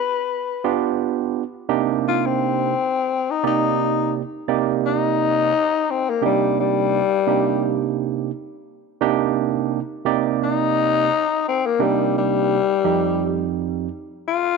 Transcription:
Already playing: B4
0.64 B3 D4 F4 G4
1.69 C3 A#3 D4 D#4 G4
2.08 F4
2.26 C4
3.31 D#4
3.43 C3 A#3 D#4 G4 D5
4.48 C3 A#3 D#4 G4 D5
4.86 D#4
5.90 C4
6.10 A#3
6.22 C3 G3 A#3 D4 D#4 G4
6.59 G3
7.27 C3 A#3 D4 D#4 G4
9.01 C3 A#3 D4 D#4 G4
10.05 C3 A#3 D#4 G4 D5
10.43 D#4
11.48 C4
11.66 A#3
11.79 C3 G3 A#3 D4 D#4 G4
12.18 G3
12.84 F2 F3 C4 D#4 G4
14.28 F4

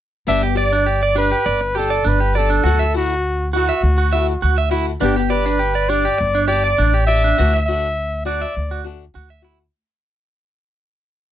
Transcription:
0.27 G1 B3 D4 G4 E5
0.43 G4
0.55 G4 D5
0.73 D4
0.86 G4
1.03 D5
1.15 D4 G4 B4
1.32 G4
1.46 G1 D5
1.61 muted clean electric guitar stroke
1.75 D4 G4 A4
1.90 D5
2.04 G1 D4 B4
2.20 G4
2.35 D4 G4 A4 D5
2.50 D4
2.64 D2 F#3 A3 E4 F#4
2.79 E5
2.94 A3 E4 F#4
3.53 A3 E4 F#4
3.69 E5
3.83 D2
3.98 F#4
4.13 E4 F#4 E5
4.17 A3
4.42 D2 F#4
4.58 E5
4.71 A3 E4 F#4
5.00 G1 B3 D4 G4
5.16 G4
5.30 D4 G4 B4 D5
5.46 D4
5.59 G4
5.75 D5
5.89 D4 G4 D5
6.05 G4
6.18 G1, muted clean electric guitar stroke
6.35 D4
6.48 G4 D5
6.53 D4
6.64 D5
6.78 A1 D4
6.94 G4
7.07 G4 D5 E5
7.12 D4
7.24 D4
7.38 D2 E3 A3 D4 F#4
7.54 E5
7.66 D4 F#4 E5
7.72 A3
8.25 D4 F#4 D5
8.41 E5
8.57 D2
8.71 F#4
8.84 A3 D4 F#4
9.15 D2 F#4
9.30 E5
9.42 A3 E4 F#4, muted steel-string acoustic guitar stroke

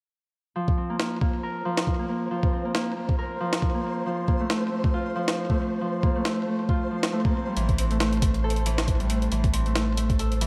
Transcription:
0.56 F3 C5
0.68 kick
0.78 C4
0.90 A#3
0.99 A#3, snare
1.21 A#3, kick
1.43 A#4
1.65 F3
1.77 snare
1.87 kick
1.99 A#3
2.09 A#3
2.31 F3
2.43 kick
2.53 C4
2.65 A#3
2.75 A#3, snare
2.97 A#3
3.09 kick
3.19 A#4
3.40 F3
3.53 snare
3.62 kick
3.75 A#3
3.84 A#3
4.06 F3
4.28 A#3, kick
4.40 A3
4.50 A3, snare
4.72 A3
4.84 kick
4.94 F4
5.16 F3
5.28 snare
5.50 A3, kick
5.59 A3
5.81 F3
6.03 A#3, kick
6.15 A3
6.25 A3, snare
6.47 A3
6.69 F4, kick
6.91 F3
7.03 snare
7.13 A3
7.25 A#3, kick
7.35 C4
7.47 G3
7.57 A1 E3, closed hi-hat
7.69 kick, closed hi-hat
7.78 C4, closed hi-hat
7.91 A3, closed hi-hat
8.00 A3, snare, closed hi-hat
8.13 closed hi-hat
8.22 A3, kick, closed hi-hat
8.34 closed hi-hat
8.44 A4
8.50 closed hi-hat
8.56 closed hi-hat
8.66 E3, closed hi-hat
8.78 snare, closed hi-hat
8.88 kick, closed hi-hat
9.00 G3, closed hi-hat
9.10 A3, closed hi-hat
9.22 closed hi-hat
9.32 A1 E3, closed hi-hat
9.44 kick, closed hi-hat
9.54 C4, closed hi-hat
9.66 A3, closed hi-hat
9.76 A3, snare, closed hi-hat
9.97 A3, closed hi-hat
10.10 kick, closed hi-hat
10.19 A4, closed hi-hat
10.32 closed hi-hat
10.41 E3, closed hi-hat

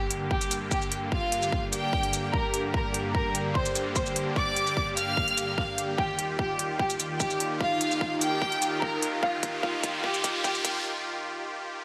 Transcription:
Already playing: G2 D3 A#3 G4 G5
0.11 D5, closed hi-hat
0.31 G4 G5, kick
0.41 closed hi-hat, shaker
0.51 closed hi-hat, shaker
0.71 G4 G5, kick, shaker
0.82 shaker
0.92 closed hi-hat
1.08 F4 F5 G5, kick
1.32 closed hi-hat
1.42 shaker
1.52 kick
1.73 G4 G5, closed hi-hat, shaker
1.93 kick
2.03 closed hi-hat
2.13 closed hi-hat, shaker
2.33 A#4 A#5, kick
2.54 closed hi-hat
2.74 A#4 A#5, kick
2.94 closed hi-hat
3.15 A#4 A#5, kick
3.35 closed hi-hat
3.55 C5 C6, kick
3.65 closed hi-hat, shaker
3.75 closed hi-hat, shaker
3.96 C5 C6, kick, shaker
4.06 shaker
4.16 closed hi-hat
4.36 D5 D6, kick
4.56 closed hi-hat
4.67 shaker
4.77 kick
4.97 F5 F6, closed hi-hat, shaker
5.17 kick
5.28 closed hi-hat
5.38 closed hi-hat, shaker
5.58 F5 F6, kick
5.78 closed hi-hat
5.98 D#2 D#3 D#4 F4 G4 G5, kick, riser
6.18 F5, closed hi-hat
6.39 G4 G5, kick
6.59 A#4, closed hi-hat
6.79 G4 G5, kick
6.90 closed hi-hat, shaker
7.00 closed hi-hat, shaker
7.20 G4 G5, kick, shaker
7.30 shaker
7.40 closed hi-hat
7.60 F4 F5, kick
7.81 closed hi-hat
7.91 shaker
8.01 kick
8.21 G4 G5, closed hi-hat, shaker
8.42 kick
8.52 closed hi-hat
8.62 closed hi-hat, shaker
8.82 A#4 A#5, kick
9.02 closed hi-hat
9.23 F4 F5, kick
9.43 kick, closed hi-hat
9.63 F4 F5, kick
9.83 kick, closed hi-hat
10.04 G4 G5, kick
10.14 closed hi-hat, shaker
10.24 kick, closed hi-hat, shaker
10.44 G4 G5, kick, shaker
10.55 shaker
10.65 kick, closed hi-hat

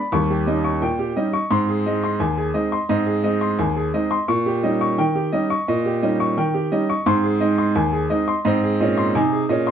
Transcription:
Already playing: B5
0.12 D#2 G3 C#6
0.30 G4
0.47 G3 C#4 D#4 D#5
0.64 C#6
0.82 A#2 G5
0.99 G4
1.16 G3 C#4 D#4 D#5
1.33 C#6
1.51 G#2 C4 C6
1.68 G#4
1.86 G#3 C4 D#4 D#5
2.04 C6
2.20 D#2 G#5
2.37 G#4
2.54 G#3 C4 D#4 D#5
2.72 C6
2.89 G#2 C4 D#5
3.06 G#4
3.24 G#3 C4 D#4 D#5
3.41 C6
3.59 D#2 G#5
3.76 G#4
3.94 G#3 C4 D#4 D#5
4.11 C6
4.28 A#2 C#6
4.46 G4
4.63 G3 C#4 D#4 D#5
4.81 C#6
4.98 D#3 G5
5.15 G4
5.32 G3 C#4 D#4 D#5
5.50 C#6
5.68 A#2 D#5
5.86 G4
6.02 G3 C#4 D#4 D#5
6.20 C#6
6.37 D#3 G5
6.54 G4
6.72 G3 C#4 D#4 D#5
6.90 C#6
7.06 G#2 C4 C6
7.24 G#4
7.40 G#3 C4 D#4 D#5
7.58 C6
7.75 D#2 G#5
7.93 G#4
8.10 G#3 C4 D#4 D#5
8.28 C6
8.45 G#2 C4 D#5
8.63 G#4
8.80 A#2 C#4 D#5
8.97 C6
9.15 C3 D#4 G#5
9.32 G#4
9.49 A#2 C#4 D#5
9.67 C6

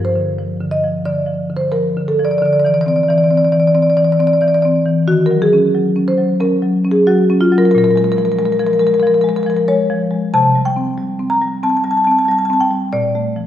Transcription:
Already playing: G2 F3
0.05 C5
0.16 D3
0.38 F3
0.61 D3
0.71 D#5
0.84 F3
1.05 D3 D5
1.26 F3
1.50 D3
1.57 C5
1.72 F3 A#4
1.97 D3
2.08 A4
2.19 F3
2.25 D5
2.31 D5
2.38 D3 D5
2.46 D5
2.53 D5
2.60 D5
2.65 E3 D5
2.74 D5
2.81 D5
2.86 C4 D5
2.96 D5
3.03 D5
3.08 E3 D5
3.18 D5
3.24 D5
3.31 C4 D5
3.37 D5
3.45 D5
3.52 E3 D5
3.60 D5
3.67 D5
3.74 C4 D5
3.82 D5
3.90 D5
3.97 E3 D5
4.04 D5
4.12 D5
4.19 C4 D5
4.27 D5
4.33 D5
4.41 E3 D5
4.48 D5
4.54 D5
4.62 C4 D5
4.86 E3
5.08 D#3 F#4
5.26 A#4
5.31 F#3
5.42 G#4
5.53 C#4
5.75 F#3
5.96 C#4
6.08 C5
6.18 F#3
6.40 C#4 A#4
6.62 F#3
6.85 C#4
6.91 G#4
7.07 F#3 F#4
7.30 C#4
7.41 F4
7.52 F#3
7.58 A#4
7.65 A#4
7.71 A#2 A#4
7.78 A#4
7.84 A#4
7.91 A#4
7.96 G#3 A#4
8.04 A#4
8.12 A#4
8.17 F3 A#4
8.25 A#4
8.32 A#4
8.39 G#3 A#4
8.45 A#4
8.52 A#4
8.59 F3 A#4
8.66 A#4
8.73 A#4
8.79 G#3 A#4
8.87 A#4
8.94 A#4
9.00 F3 A#4
9.07 A#4
9.14 A#4
9.21 G#3 A#4
9.29 A#4
9.36 A#4
9.43 F3 A#4
9.50 A#4
9.57 A#4
9.68 G#3 C#5
9.90 F3
10.11 G#3
10.34 C3 A5
10.55 G3
10.65 G5
10.76 C4
10.98 G3
11.19 C4
11.30 A#5
11.42 G3
11.63 C4 A5
11.70 A5
11.77 A5
11.84 G3 A5
11.91 A5
11.97 A5
12.04 C4 A5
12.11 A5
12.19 A5
12.25 G3 A5
12.31 A5
12.38 A5
12.45 A5
12.50 C4 A5
12.61 G5
12.71 G3
12.93 A#2 D5
13.15 A3
13.36 F3

